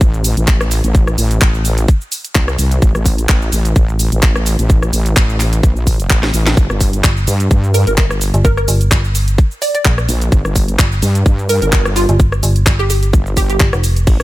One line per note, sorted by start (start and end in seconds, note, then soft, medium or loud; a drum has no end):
0.01 0.35 A1 loud
0.01 kick loud
0.01 closed hi-hat medium
0.01 shaker soft
0.14 shaker soft
0.24 open hi-hat loud
0.24 shaker medium
0.37 0.82 A1 loud
0.37 closed hi-hat medium
0.37 shaker soft
0.48 kick loud
0.48 clap loud
0.48 closed hi-hat soft
0.48 shaker soft
0.61 cross-stick medium
0.61 shaker soft
0.71 open hi-hat loud
0.71 shaker medium
0.84 1.16 A1 medium
0.84 closed hi-hat medium
0.84 shaker soft
0.95 kick loud
0.95 closed hi-hat medium
0.95 shaker soft
1.07 cross-stick medium
1.07 shaker soft
1.18 1.40 A1 loud
1.18 open hi-hat loud
1.18 shaker medium
1.31 closed hi-hat medium
1.31 shaker soft
1.41 1.87 A1 loud
1.41 kick loud
1.41 clap loud
1.41 closed hi-hat medium
1.41 shaker soft
1.54 shaker soft
1.65 open hi-hat loud
1.65 shaker medium
1.78 closed hi-hat medium
1.78 shaker soft
1.88 kick loud
1.88 closed hi-hat medium
1.88 shaker soft
2.01 shaker soft
2.12 open hi-hat loud
2.12 shaker medium
2.25 closed hi-hat medium
2.25 shaker soft
2.35 2.57 C2 loud
2.35 kick loud
2.35 clap loud
2.35 closed hi-hat medium
2.35 shaker soft
2.48 cross-stick medium
2.48 shaker soft
2.59 2.80 C2 loud
2.59 open hi-hat loud
2.59 shaker medium
2.71 closed hi-hat medium
2.71 shaker soft
2.82 2.93 A1 loud
2.82 kick loud
2.82 closed hi-hat medium
2.82 shaker soft
2.95 3.27 A1 loud
2.95 cross-stick medium
2.95 shaker soft
3.06 kick medium
3.06 open hi-hat loud
3.06 shaker medium
3.18 closed hi-hat medium
3.18 shaker soft
3.29 3.51 A1 loud
3.29 kick loud
3.29 clap loud
3.29 closed hi-hat medium
3.29 shaker soft
3.42 shaker soft
3.52 3.74 A1 loud
3.52 open hi-hat loud
3.52 shaker medium
3.65 closed hi-hat medium
3.65 shaker soft
3.76 4.10 A1 loud
3.76 kick loud
3.76 closed hi-hat medium
3.76 shaker soft
3.89 shaker soft
3.99 open hi-hat loud
3.99 shaker medium
4.12 4.57 A1 loud
4.12 closed hi-hat medium
4.12 shaker soft
4.23 kick loud
4.23 clap loud
4.23 closed hi-hat medium
4.23 shaker soft
4.36 cross-stick medium
4.36 shaker soft
4.46 open hi-hat loud
4.46 shaker medium
4.59 4.91 A1 medium
4.59 closed hi-hat medium
4.59 shaker soft
4.70 kick loud
4.70 closed hi-hat medium
4.70 shaker soft
4.82 cross-stick medium
4.82 shaker soft
4.93 5.15 A1 loud
4.93 open hi-hat loud
4.93 shaker medium
5.06 closed hi-hat medium
5.06 shaker soft
5.16 5.62 A1 loud
5.16 kick loud
5.16 clap loud
5.16 closed hi-hat medium
5.16 shaker soft
5.29 shaker soft
5.40 clap soft
5.40 open hi-hat loud
5.40 shaker medium
5.53 closed hi-hat medium
5.53 shaker soft
5.63 6.09 A#1 loud
5.63 kick loud
5.63 closed hi-hat medium
5.63 shaker soft
5.76 shaker soft
5.87 kick medium
5.87 open hi-hat loud
5.87 shaker medium
6.00 closed hi-hat medium
6.00 shaker soft
6.10 6.32 A1 medium
6.10 kick loud
6.10 clap loud
6.10 closed hi-hat medium
6.10 shaker soft
6.23 snare medium
6.23 shaker soft
6.34 6.55 A1 loud
6.34 open hi-hat loud
6.34 shaker medium
6.47 snare loud
6.47 closed hi-hat medium
6.47 shaker soft
6.57 6.68 G1 loud
6.57 kick loud
6.57 closed hi-hat medium
6.57 shaker soft
6.70 7.02 G1 loud
6.70 cross-stick medium
6.70 shaker soft
6.81 kick medium
6.81 open hi-hat loud
6.81 shaker medium
6.93 closed hi-hat medium
6.93 shaker soft
7.04 7.26 G1 loud
7.04 kick loud
7.04 clap loud
7.04 closed hi-hat medium
7.04 shaker soft
7.17 shaker soft
7.27 7.49 G2 loud
7.27 open hi-hat loud
7.27 shaker medium
7.40 closed hi-hat medium
7.40 shaker soft
7.51 7.85 G2 loud
7.51 kick loud
7.51 closed hi-hat medium
7.51 shaker soft
7.64 shaker soft
7.74 7.82 A#4 medium
7.74 open hi-hat loud
7.74 shaker medium
7.87 8.32 G1 medium
7.87 7.94 A#4 medium
7.87 closed hi-hat medium
7.87 shaker soft
7.98 kick loud
7.98 clap loud
7.98 closed hi-hat medium
7.98 shaker soft
8.11 cross-stick medium
8.11 shaker soft
8.21 open hi-hat loud
8.21 shaker medium
8.34 8.66 G1 loud
8.34 closed hi-hat medium
8.34 shaker soft
8.45 8.53 A#4 medium
8.45 kick loud
8.45 closed hi-hat medium
8.45 shaker soft
8.57 8.64 A#4 medium
8.57 cross-stick medium
8.57 shaker soft
8.68 8.90 G1 medium
8.68 open hi-hat loud
8.68 shaker medium
8.81 closed hi-hat medium
8.81 shaker soft
8.91 9.37 G1 loud
8.91 kick loud
8.91 clap loud
8.91 closed hi-hat medium
8.91 shaker soft
9.04 shaker soft
9.15 open hi-hat loud
9.15 shaker medium
9.28 closed hi-hat medium
9.28 shaker soft
9.38 kick loud
9.38 closed hi-hat medium
9.38 shaker soft
9.51 shaker soft
9.62 9.70 D5 medium
9.62 open hi-hat loud
9.62 shaker medium
9.75 9.81 D5 medium
9.75 closed hi-hat medium
9.75 shaker soft
9.85 10.07 A#1 medium
9.85 kick loud
9.85 clap loud
9.85 closed hi-hat medium
9.85 shaker soft
9.98 cross-stick medium
9.98 shaker soft
10.09 10.30 A#1 loud
10.09 open hi-hat loud
10.09 shaker medium
10.22 closed hi-hat medium
10.22 shaker soft
10.32 10.43 G1 loud
10.32 kick loud
10.32 closed hi-hat medium
10.32 shaker soft
10.45 10.77 G1 loud
10.45 cross-stick medium
10.45 shaker soft
10.56 kick medium
10.56 open hi-hat loud
10.56 shaker medium
10.68 closed hi-hat medium
10.68 shaker soft
10.79 11.01 G1 loud
10.79 kick loud
10.79 clap loud
10.79 closed hi-hat medium
10.79 shaker soft
10.92 shaker soft
11.02 11.24 G2 loud
11.02 open hi-hat loud
11.02 shaker medium
11.15 closed hi-hat medium
11.15 shaker soft
11.26 11.60 G2 loud
11.26 kick loud
11.26 closed hi-hat medium
11.26 shaker soft
11.39 shaker soft
11.49 11.57 A#4 medium
11.49 open hi-hat loud
11.49 shaker medium
11.62 12.07 G1 loud
11.62 11.69 A#4 medium
11.62 closed hi-hat medium
11.62 shaker soft
11.73 kick loud
11.73 clap loud
11.73 closed hi-hat medium
11.73 shaker soft
11.85 cross-stick medium
11.85 shaker soft
11.96 12.12 F4 medium
11.96 open hi-hat loud
11.96 shaker medium
12.09 12.41 G1 loud
12.09 closed hi-hat medium
12.09 shaker soft
12.20 kick loud
12.20 closed hi-hat medium
12.20 shaker soft
12.32 cross-stick medium
12.32 shaker soft
12.43 12.65 G1 loud
12.43 open hi-hat loud
12.43 shaker medium
12.56 closed hi-hat medium
12.56 shaker soft
12.66 13.12 G1 loud
12.66 kick loud
12.66 clap loud
12.66 closed hi-hat medium
12.66 shaker soft
12.79 12.86 G4 medium
12.79 shaker soft
12.90 12.98 G4 medium
12.90 open hi-hat loud
12.90 shaker medium
13.03 closed hi-hat medium
13.03 shaker soft
13.13 13.59 G1 loud
13.13 kick loud
13.13 closed hi-hat medium
13.13 shaker soft
13.26 shaker soft
13.37 13.45 G4 medium
13.37 kick medium
13.37 open hi-hat loud
13.37 shaker medium
13.50 13.56 G4 medium
13.50 closed hi-hat medium
13.50 shaker soft
13.60 13.71 G1 loud
13.60 kick loud
13.60 clap loud
13.60 closed hi-hat medium
13.60 shaker soft
13.73 14.05 F1 loud
13.73 cross-stick medium
13.73 shaker soft
13.84 open hi-hat loud
13.84 shaker medium
13.96 closed hi-hat medium
13.96 shaker soft
14.07 14.18 A1 loud
14.07 kick loud
14.07 closed hi-hat medium
14.07 ride medium
14.07 shaker soft
14.20 14.23 A1 loud
14.20 cross-stick medium